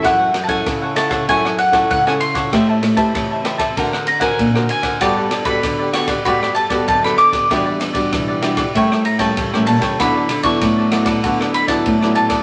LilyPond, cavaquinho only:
\new Staff \with { instrumentName = "Cavaquinho" } { \time 4/4 \key fis \minor \tempo 4 = 96 <e' a' cis'' fis''>16 <a' cis'' fis''>16 r16 <a' cis'' fis''>8 <a' cis'' fis''>16 <e' a' cis'' fis''>16 <a' cis'' fis''>16 <e' a' cis'' fis''>16 <a' cis'' fis''>16 r16 <a' cis'' fis''>8 <a' cis'' fis''>8 <a' cis'' fis''>16 | <g' c'' e'' a''>16 <c'' e'' a''>16 r16 <c'' e'' a''>8 <c'' e'' a''>16 <g' c'' e'' a''>16 <c'' e'' a''>16 <d' ais' c'' fis''>16 <ais' c'' fis''>16 r16 <ais' c'' fis''>8 <ais' c'' fis''>8 <ais' c'' fis''>16 | <fis' g' b' d''>16 <g' b' d''>16 r16 <g' b' d''>8 <g' b' d''>16 <fis' g' b' d''>16 <g' b' d''>16 <fis' g' b' d''>16 <g' b' d''>16 r16 <g' b' d''>8 <g' b' d''>8 <g' b' d''>16 | <e' g' b' d''>16 <g' b' d''>16 r16 <g' b' d''>8 <g' b' d''>16 <e' g' b' d''>16 <g' b' d''>16 <e' a' cis'' g''>16 <a' cis'' g''>16 r16 <a' cis'' g''>8 <a' cis'' g''>8 <a' cis'' g''>16 |
<fis' a' b' d''>16 <a' b' d''>16 r16 <a' b' d''>8 <a' b' d''>16 <fis' a' b' d''>16 <a' b' d''>16 <fis' a' b' d''>16 <a' b' d''>16 r16 <a' b' d''>8 <a' b' d''>8 <a' b' d''>16 | }